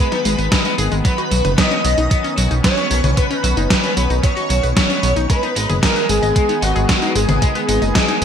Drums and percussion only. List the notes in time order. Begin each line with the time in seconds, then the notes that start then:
0.12 snare, closed hi-hat, tambourine
0.25 open hi-hat, tambourine
0.39 closed hi-hat, tambourine
0.52 kick, snare, closed hi-hat, tambourine
0.65 closed hi-hat, tambourine
0.78 open hi-hat, tambourine
0.92 closed hi-hat, tambourine
1.05 kick, closed hi-hat, tambourine
1.18 closed hi-hat, tambourine
1.31 open hi-hat, tambourine
1.45 closed hi-hat, mid tom, tambourine
1.58 kick, snare, closed hi-hat, tambourine
1.71 closed hi-hat, tambourine
1.85 open hi-hat, tambourine
1.98 closed hi-hat, tambourine
2.11 kick, closed hi-hat, tambourine
2.24 closed hi-hat, tambourine
2.38 open hi-hat, tambourine
2.51 closed hi-hat, tambourine
2.64 kick, snare, closed hi-hat, tambourine
2.77 closed hi-hat, tambourine
2.91 open hi-hat, tambourine
3.04 closed hi-hat, mid tom, tambourine
3.17 kick, closed hi-hat, tambourine
3.31 closed hi-hat, tambourine
3.44 open hi-hat, tambourine
3.57 closed hi-hat, tambourine
3.70 kick, snare, closed hi-hat, tambourine
3.84 closed hi-hat, tambourine
3.97 open hi-hat, tambourine
4.10 closed hi-hat, tambourine
4.24 kick, closed hi-hat, tambourine
4.37 closed hi-hat, tambourine
4.50 open hi-hat, tambourine
4.63 closed hi-hat, tambourine
4.77 kick, snare, closed hi-hat, tambourine
4.90 closed hi-hat, tambourine
5.03 open hi-hat, tambourine
5.16 closed hi-hat, tambourine
5.30 kick, closed hi-hat, tambourine
5.43 closed hi-hat, tambourine
5.56 open hi-hat, tambourine
5.70 closed hi-hat, mid tom, tambourine
5.83 kick, snare, closed hi-hat, tambourine
5.96 closed hi-hat, tambourine
6.09 open hi-hat, tambourine
6.23 closed hi-hat, tambourine
6.36 kick, closed hi-hat, tambourine
6.49 closed hi-hat, tambourine
6.62 open hi-hat, tambourine
6.76 closed hi-hat, tambourine
6.89 kick, snare, closed hi-hat, tambourine
7.02 closed hi-hat, tambourine
7.15 open hi-hat, tambourine
7.29 closed hi-hat, mid tom, tambourine
7.42 kick, closed hi-hat, tambourine
7.55 closed hi-hat, tambourine
7.69 open hi-hat, tambourine
7.82 closed hi-hat, tambourine
7.95 kick, snare, closed hi-hat, tambourine
8.08 closed hi-hat, tambourine